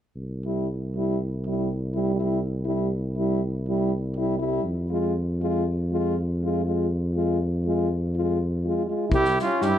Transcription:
0.16 4.61 C2 medium
0.46 0.68 G3 soft
0.46 0.68 E4 soft
0.96 1.18 G3 soft
0.96 1.19 E4 soft
1.47 1.69 G3 soft
1.47 1.69 E4 soft
1.94 2.18 G3 soft
1.94 2.15 E4 soft
2.16 2.42 G3 soft
2.16 2.40 E4 soft
2.65 2.91 G3 soft
2.65 2.90 E4 soft
3.17 3.41 G3 soft
3.17 3.41 E4 soft
3.69 3.92 G3 medium
3.69 3.92 E4 soft
4.17 4.39 G3 medium
4.17 4.38 E4 medium
4.38 4.63 G3 soft
4.38 4.63 E4 soft
4.64 8.93 F2 medium
4.90 5.15 G#3 medium
4.90 5.14 F4 soft
5.41 5.66 G#3 medium
5.41 5.65 F4 medium
5.92 6.16 G#3 medium
5.92 6.16 F4 soft
6.43 6.65 G#3 soft
6.43 6.64 F4 medium
6.65 6.89 G#3 soft
6.65 6.88 F4 soft
7.15 7.39 G#3 soft
7.15 7.39 F4 soft
7.66 7.89 G#3 medium
7.66 7.89 F4 soft
8.16 8.40 G#3 soft
8.16 8.39 F4 soft
8.65 8.88 G#3 soft
8.65 8.87 F4 soft
8.87 9.11 G#3 soft
8.87 9.09 F4 soft
9.09 9.38 C2 medium
9.09 9.23 G3 medium
9.09 9.21 E4 medium
9.09 kick medium
9.15 9.39 E4 medium
9.15 9.38 G4 medium
9.25 snare soft
9.36 9.48 G3 soft
9.36 9.46 E4 soft
9.36 snare soft
9.42 9.69 C#4 medium
9.42 9.64 F4 medium
9.59 9.79 G2 medium
9.59 9.73 G3 medium
9.59 9.70 E4 soft
9.59 9.79 G4 medium
9.59 snare soft
9.68 9.79 E4 medium

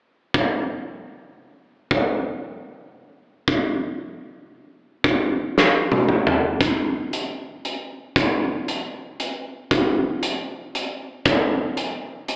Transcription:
0.34 kick medium
1.91 kick medium
3.48 kick medium
5.04 kick medium
5.58 snare soft
5.92 high tom soft
6.09 mid tom soft
6.27 mid tom soft
6.61 kick medium
6.61 closed hi-hat soft
7.13 closed hi-hat soft
7.65 closed hi-hat soft
8.16 kick medium
8.16 closed hi-hat soft
8.68 closed hi-hat soft
9.20 closed hi-hat soft
9.71 kick medium
9.71 closed hi-hat soft
10.23 closed hi-hat soft
10.75 closed hi-hat soft
11.25 kick medium
11.25 closed hi-hat soft
11.77 closed hi-hat soft
12.28 closed hi-hat soft

